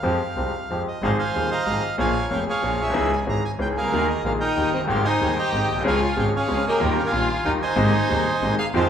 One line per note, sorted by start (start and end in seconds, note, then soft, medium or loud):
0.00 0.17 F2 medium
0.00 0.17 F3 medium
0.00 0.17 G#3 medium
0.00 0.17 C4 medium
0.00 0.17 G4 medium
0.00 0.82 F5 medium
0.36 0.51 C2 soft
0.36 0.51 C2 medium
0.36 0.51 C3 soft
0.36 0.50 F3 soft
0.36 0.51 G#3 soft
0.36 0.51 C4 soft
0.36 0.51 G4 soft
0.69 0.84 F2 medium
0.69 0.84 F2 soft
0.69 0.85 F3 soft
0.69 0.84 G#3 soft
0.69 0.85 C4 soft
0.69 0.85 G4 soft
0.88 1.03 D#5 medium
1.02 1.16 G#1 medium
1.02 1.17 G#1 medium
1.02 1.17 G#2 medium
1.02 1.16 F3 medium
1.02 1.17 C4 medium
1.02 1.17 D#4 medium
1.02 1.17 G#4 medium
1.02 1.17 C5 medium
1.02 1.12 F5 medium
1.18 1.64 C5 medium
1.18 1.50 F5 medium
1.18 1.50 G#5 medium
1.35 1.49 D#1 medium
1.35 1.49 D#2 soft
1.35 1.49 D#2 medium
1.35 1.49 F3 soft
1.35 1.49 C4 soft
1.35 1.49 D#4 soft
1.35 1.49 G#4 soft
1.51 1.96 D#5 medium
1.51 1.96 F5 medium
1.51 1.82 A#5 loud
1.66 1.81 G#1 medium
1.66 1.81 G#2 medium
1.66 1.81 F3 soft
1.66 1.81 C4 soft
1.66 1.81 D#4 soft
1.66 1.81 G#4 soft
1.98 2.13 A#1 medium
1.98 2.12 A#2 medium
1.98 2.12 F3 medium
1.98 2.12 A#3 medium
1.98 2.12 C#4 medium
1.98 2.12 G#4 medium
1.98 2.44 C#5 medium
1.98 2.44 F5 medium
1.98 2.30 G#5 medium
2.31 2.45 F1 medium
2.31 2.45 F2 medium
2.31 2.45 F3 soft
2.31 2.45 A#3 soft
2.31 2.45 C#4 soft
2.31 2.45 G#4 soft
2.31 2.40 G5 medium
2.48 2.80 G#4 medium
2.48 2.93 C#5 medium
2.48 2.82 F5 medium
2.62 2.77 A#1 medium
2.62 2.77 A#2 medium
2.62 2.76 F3 soft
2.62 2.77 A#3 soft
2.62 2.77 C#4 soft
2.62 2.77 G#4 soft
2.80 2.87 A#1 soft
2.80 2.96 B1 medium
2.80 3.25 G#4 medium
2.80 3.14 E5 medium
2.88 2.92 B1 medium
2.88 2.95 C2 medium
2.93 3.08 C#2 medium
2.93 3.09 C#2 medium
2.93 3.08 C#3 medium
2.93 3.08 E3 medium
2.93 3.08 C#4 medium
2.93 3.08 D#4 medium
2.93 3.08 G#4 medium
3.13 3.20 G#5 medium
3.26 3.40 G#1 medium
3.26 3.41 G#1 medium
3.26 3.41 G#2 medium
3.26 3.40 E3 soft
3.26 3.40 C#4 soft
3.26 3.41 D#4 soft
3.26 3.41 G#4 medium
3.26 3.43 A#5 medium
3.45 3.52 G#5 medium
3.59 3.73 C#2 medium
3.59 3.73 C#3 medium
3.59 3.73 E3 soft
3.59 3.73 C#4 soft
3.59 3.73 D#4 soft
3.59 3.73 G#4 medium
3.59 3.68 G5 medium
3.76 3.84 C2 soft
3.76 3.91 C#2 medium
3.76 4.21 G#4 medium
3.76 4.22 A#4 medium
3.76 4.07 F5 medium
3.84 3.88 C#2 medium
3.84 3.92 D2 medium
3.92 4.05 D#2 medium
3.92 4.06 D#2 medium
3.92 4.06 D#3 medium
3.92 4.06 G#3 medium
3.92 4.06 A#3 medium
3.92 4.06 G#4 medium
4.10 4.24 D#5 medium
4.24 4.37 A#1 medium
4.24 4.38 A#1 medium
4.24 4.38 A#2 medium
4.24 4.38 D#3 soft
4.24 4.38 G#3 soft
4.24 4.38 A#3 soft
4.24 4.33 A#3 medium
4.24 4.38 G#4 soft
4.24 4.33 F5 medium
4.40 4.71 D#4 medium
4.40 4.86 A#4 medium
4.40 4.74 D#5 medium
4.40 4.71 G5 medium
4.56 4.70 D#2 medium
4.56 4.70 D#3 soft
4.56 4.70 G3 soft
4.56 4.71 A#3 soft
4.56 4.71 G4 soft
4.73 4.88 F#1 medium
4.73 4.80 C4 medium
4.73 4.82 D#5 medium
4.77 4.81 F1 soft
4.77 4.85 F#1 medium
4.84 4.89 G1 medium
4.84 5.02 G#1 medium
4.84 5.02 G#2 medium
4.84 5.02 D#3 medium
4.84 5.02 G#3 medium
4.84 5.02 C4 medium
4.84 5.02 G4 medium
4.89 5.03 G#1 medium
4.89 5.05 C4 medium
4.89 5.03 C5 medium
4.89 5.06 F5 medium
5.05 5.36 D#4 medium
5.05 5.50 C5 medium
5.05 5.38 D#5 medium
5.05 5.35 G#5 medium
5.20 5.35 D#1 medium
5.20 5.35 D#2 medium
5.20 5.34 D#3 soft
5.20 5.35 G#3 soft
5.20 5.35 C4 soft
5.20 5.35 G4 medium
5.38 5.68 G4 medium
5.38 5.83 D#5 medium
5.38 5.83 G5 medium
5.38 5.68 A#5 medium
5.52 5.66 G#1 medium
5.52 5.67 G#1 medium
5.52 5.66 G#2 medium
5.52 5.66 D#3 soft
5.52 5.67 G#3 soft
5.52 5.67 C4 soft
5.52 5.66 G4 medium
5.70 5.77 A#1 soft
5.70 5.85 B1 medium
5.76 5.81 B1 medium
5.80 5.85 C2 medium
5.80 5.98 C#2 medium
5.80 5.99 G#3 medium
5.84 5.99 C#2 medium
5.84 5.99 C#3 medium
5.84 5.99 F3 medium
5.84 5.99 C#4 medium
5.84 6.16 F4 medium
5.84 5.99 G#4 medium
5.84 6.32 C#5 medium
5.84 6.32 F5 medium
5.84 6.17 G#5 medium
6.16 6.31 G#1 medium
6.16 6.32 G#1 medium
6.16 6.31 G#2 medium
6.16 6.31 F3 soft
6.16 6.31 G#3 soft
6.16 6.31 C#4 soft
6.16 6.26 C#4 medium
6.16 6.31 G#4 medium
6.16 6.26 G5 medium
6.35 6.65 C#4 medium
6.35 6.80 G#4 medium
6.35 6.80 C#5 medium
6.35 6.65 F5 medium
6.48 6.63 C#2 medium
6.48 6.64 C#2 medium
6.48 6.63 C#3 medium
6.48 6.62 F3 soft
6.48 6.63 G#3 soft
6.48 6.63 C#4 soft
6.48 6.63 G#4 medium
6.67 6.96 A#3 medium
6.67 7.12 G4 medium
6.67 7.12 A#4 medium
6.67 6.97 D#5 medium
6.80 6.94 D#2 medium
6.80 6.95 D#2 medium
6.80 6.94 D#3 medium
6.80 6.94 G3 medium
6.80 6.94 A#3 medium
6.80 6.94 F4 medium
6.97 7.01 C#4 medium
6.97 7.03 F5 medium
7.05 7.43 F4 medium
7.05 7.51 F5 medium
7.05 7.47 G#5 medium
7.11 7.26 A#1 medium
7.11 7.27 A#1 medium
7.11 7.26 A#2 medium
7.11 7.26 D#3 soft
7.11 7.26 G3 soft
7.11 7.26 A#3 soft
7.11 7.27 F4 medium
7.45 7.59 D#2 medium
7.45 7.59 D#3 medium
7.45 7.59 G3 soft
7.45 7.59 A#3 soft
7.45 7.52 D#4 medium
7.45 7.59 F4 medium
7.45 7.53 G5 medium
7.62 8.55 D#4 medium
7.62 8.55 C5 medium
7.62 8.55 D#5 medium
7.62 8.55 G#5 loud
7.76 7.90 G#1 medium
7.76 7.91 G#1 loud
7.76 7.90 G#2 medium
7.76 7.90 C3 medium
7.76 7.91 G#3 medium
7.76 7.91 A#3 medium
7.76 7.90 D#4 medium
8.09 8.23 D#1 medium
8.09 8.23 D#2 medium
8.09 8.24 D#2 medium
8.09 8.23 C3 medium
8.09 8.23 G#3 soft
8.09 8.23 A#3 soft
8.09 8.23 D#4 medium
8.42 8.56 G#1 medium
8.42 8.56 G#2 medium
8.42 8.56 C3 medium
8.42 8.56 G#3 soft
8.42 8.56 A#3 soft
8.42 8.56 D#4 medium
8.58 8.66 G#4 loud
8.58 8.66 F5 medium
8.74 8.88 F2 medium
8.74 8.88 F2 loud
8.74 8.88 D#3 medium
8.74 8.88 F3 medium
8.74 8.88 G#3 medium
8.74 8.89 G#3 medium
8.74 8.88 C4 medium
8.74 8.89 C4 medium
8.74 8.88 F4 medium
8.74 8.89 F4 loud
8.74 8.89 C5 loud